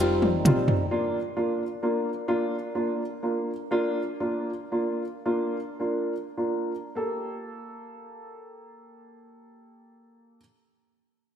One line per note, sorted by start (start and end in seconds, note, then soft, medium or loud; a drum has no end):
0.00 0.45 F1 loud
0.00 0.25 G3 medium
0.00 0.86 G3 medium
0.00 0.25 C4 medium
0.00 0.86 C4 medium
0.00 0.87 D#4 medium
0.00 0.25 F4 medium
0.00 0.41 A#4 loud
0.00 closed hi-hat soft
0.22 mid tom medium
0.45 0.88 A1 medium
0.45 0.71 G3 medium
0.45 0.71 C4 medium
0.45 0.72 F4 medium
0.45 closed hi-hat medium
0.45 mid tom loud
0.68 floor tom loud
0.91 1.17 A#3 medium
0.91 1.17 D4 medium
0.91 1.17 F4 medium
1.37 1.62 A#3 medium
1.37 1.62 D4 medium
1.37 1.62 F4 medium
1.83 2.08 A#3 medium
1.83 2.08 D4 medium
1.83 2.09 F4 medium
2.28 2.54 A#3 medium
2.28 2.54 D4 medium
2.28 2.54 F4 medium
2.75 3.02 A#3 medium
2.75 3.02 D4 medium
2.75 3.02 F4 medium
3.23 3.50 A#3 medium
3.23 3.50 D4 soft
3.23 3.50 F4 medium
3.71 3.99 A#3 medium
3.71 3.99 D4 medium
3.71 3.99 F4 medium
4.20 4.49 A#3 medium
4.20 4.49 D4 medium
4.20 4.49 F4 medium
4.71 5.02 A#3 medium
4.71 5.02 D4 soft
4.71 5.02 F4 medium
5.26 5.56 A#3 medium
5.26 5.56 D4 medium
5.26 5.56 F4 medium
5.80 6.12 A#3 medium
5.80 6.12 D4 soft
5.80 6.13 F4 soft
6.37 6.71 A#3 soft
6.37 6.71 D4 soft
6.37 6.71 F4 medium
6.95 10.37 A#3 medium
6.95 10.38 G4 soft
6.95 10.39 A4 medium